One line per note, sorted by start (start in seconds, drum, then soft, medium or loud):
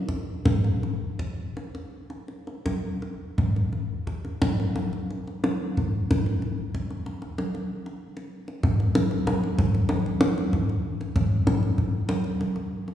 0.09 kendang slap soft
0.09 kendang low medium
0.45 kendang slap soft
0.45 kendang high medium
0.45 kendang low medium
0.64 kendang slap soft
0.83 kendang slap soft
1.19 kendang low medium
1.57 kendang slap soft
1.75 kendang slap soft
2.10 kendang slap soft
2.28 kendang slap soft
2.47 kendang slap soft
2.66 kendang high medium
2.66 kendang low medium
3.02 kendang slap soft
3.38 kendang slap soft
3.38 kendang low medium
3.56 kendang slap soft
3.73 kendang slap soft
4.07 kendang low medium
4.25 kendang slap soft
4.42 kendang slap soft
4.42 kendang high medium
4.42 kendang low medium
4.60 kendang slap soft
4.76 kendang high soft
4.93 kendang slap soft
5.11 kendang slap soft
5.28 kendang slap soft
5.44 kendang high medium
5.77 kendang slap soft
5.77 kendang low medium
6.11 kendang slap soft
6.11 kendang high soft
6.11 kendang low medium
6.26 kendang slap soft
6.42 kendang slap soft
6.75 kendang low soft
6.90 kendang slap soft
7.06 kendang slap soft
7.22 kendang slap soft
7.38 kendang high soft
7.55 kendang slap soft
7.86 kendang slap soft
8.17 kendang slap soft
8.48 kendang slap soft
8.63 kendang low medium
8.80 kendang slap soft
8.95 kendang high medium
9.11 kendang slap soft
9.27 kendang high medium
9.27 kendang low medium
9.44 kendang slap soft
9.58 kendang low medium
9.74 kendang slap soft
9.89 kendang high medium
10.06 kendang slap soft
10.21 kendang high medium
10.38 kendang slap soft
10.53 kendang low medium
10.69 kendang slap soft
11.01 kendang slap soft
11.16 kendang low medium
11.47 kendang high medium
11.47 kendang low medium
11.63 kendang slap soft
11.78 kendang low medium
12.09 kendang high medium
12.24 kendang slap soft
12.41 kendang high soft
12.56 kendang slap soft
12.88 kendang slap soft